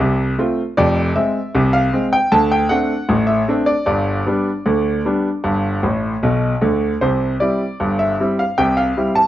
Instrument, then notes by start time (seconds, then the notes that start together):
grand piano
Already playing: C5
0.00 C2 C3
0.39 A3 C4 F4
0.77 F1 F2 D5
1.16 G#3 C4 E5
1.55 C2 C3
1.73 F5
1.93 G#3 C4
2.13 G5
2.32 D2 D3 A5
2.52 G5
2.69 A3 C4 D4 F#5
3.09 A1 A2
3.27 E5
3.48 A3 C4 D4
3.66 D5
3.86 G1 G2 D5
4.27 G3 B3 D4
4.66 D2 D3
5.05 G3 B3 D4
5.44 G1 G2
5.83 A1 A2
6.23 B1 B2
6.61 D2 D3
7.01 C2 C3 C5
7.40 G3 C4 E4 D5
7.80 G1 G2
7.99 E5
8.20 G3 C4 E4
8.39 F5
8.58 C2 C3 G5
8.77 F5
8.97 G3 C4 E4
9.16 A5